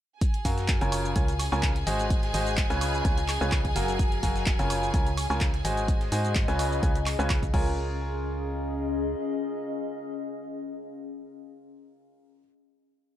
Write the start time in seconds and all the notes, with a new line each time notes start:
0.21 G#4 G#5, kick, closed hi-hat, shaker
0.34 closed hi-hat
0.45 F#2 F#3 F#4 A#4 C#5 F5 G#5, kick, closed hi-hat, open hi-hat, shaker
0.54 G#5, snare, closed hi-hat, shaker
0.68 kick, snare, clap, closed hi-hat, shaker
0.81 F#1 C#3 F4 A#4 C#5 G#5, closed hi-hat, shaker
0.92 C#4, closed hi-hat, open hi-hat, high woodblock, shaker
1.05 G#4, shaker
1.16 C#2 C#3 F4 A#4 C#5 G#5, kick, closed hi-hat, shaker
1.28 closed hi-hat, shaker
1.39 open hi-hat, high woodblock, shaker
1.46 D#5
1.52 C#2 C#3 F4 A#4 C#5 G#5, snare, high woodblock, shaker
1.63 kick, snare, clap, closed hi-hat, shaker
1.76 snare, closed hi-hat
1.87 G#1 G#3 F#4 C5 D#5 G#5, closed hi-hat, open hi-hat, shaker
1.99 closed hi-hat, shaker
2.10 kick, closed hi-hat, shaker
2.23 snare, closed hi-hat
2.34 G#1 G#3 F#4 C5 D#5 G#5, closed hi-hat, open hi-hat, shaker
2.43 A#5, closed hi-hat, shaker
2.57 kick, snare, clap, closed hi-hat, shaker
2.70 C#2 C#3 F4 B4 C#5 G#5, snare, closed hi-hat, shaker
2.81 C#4, snare, closed hi-hat, open hi-hat, high woodblock, shaker
2.94 shaker
3.05 C#2 C#3 F4 B4 C#5 G#5, kick, closed hi-hat, shaker
3.18 closed hi-hat, shaker
3.28 clap, closed hi-hat, open hi-hat, high woodblock, shaker
3.41 C#2 C#3 F4 B4 C#5 G#5, shaker
3.52 kick, snare, clap, closed hi-hat, high woodblock, shaker
3.65 kick, closed hi-hat
3.76 F#1 F#3 F#4 A#4 F5 G#5, snare, closed hi-hat, open hi-hat, shaker
3.88 snare, closed hi-hat, shaker
3.99 kick, closed hi-hat, shaker
4.12 closed hi-hat
4.23 F#1 F#3 F#4 A#4 C#5 F5 G#5, kick, closed hi-hat, open hi-hat, shaker
4.32 G#5, snare, closed hi-hat, shaker
4.46 kick, snare, clap, closed hi-hat, shaker
4.59 F#1 C#3 F4 A#4 C#5 G#5, closed hi-hat, shaker
4.70 C#4, closed hi-hat, open hi-hat, high woodblock, shaker
4.83 shaker
4.94 C#2 C#3 F4 A#4 C#5 G#5, kick, closed hi-hat, shaker
5.06 closed hi-hat, shaker
5.17 open hi-hat, high woodblock, shaker
5.21 G#4 D#5
5.30 C#2 C#3 F4 A#4 C#5 G#5, snare, high woodblock, shaker
5.41 kick, snare, clap, closed hi-hat, shaker
5.54 snare, closed hi-hat
5.65 G#1 G#3 F#4 C5 D#5 G#5, closed hi-hat, open hi-hat, shaker
5.77 closed hi-hat, shaker
5.88 kick, closed hi-hat, shaker
6.01 snare, closed hi-hat
6.12 G#2 G#3 F#4 C5 D#5 G#5, closed hi-hat, open hi-hat, shaker
6.21 A#5, closed hi-hat
6.25 shaker
6.35 kick, snare, clap, closed hi-hat, shaker
6.48 C#2 C#3 F4 B4 C#5 G#5, snare, closed hi-hat, shaker
6.59 C#4, snare, closed hi-hat, open hi-hat, high woodblock, shaker
6.72 shaker
6.83 C#2 C#3 F4 B4 C#5 G#5, kick, closed hi-hat, shaker
6.95 closed hi-hat, shaker
7.06 clap, closed hi-hat, open hi-hat, high woodblock, shaker
7.19 C#2 C#3 F4 B4 C#5 G#5, shaker
7.30 kick, snare, clap, closed hi-hat, open hi-hat, high woodblock, shaker
7.43 kick, closed hi-hat, shaker
7.54 C#2 C#4 F4 A#4 C#5 G#5, kick, crash
7.61 G#4
7.92 D#5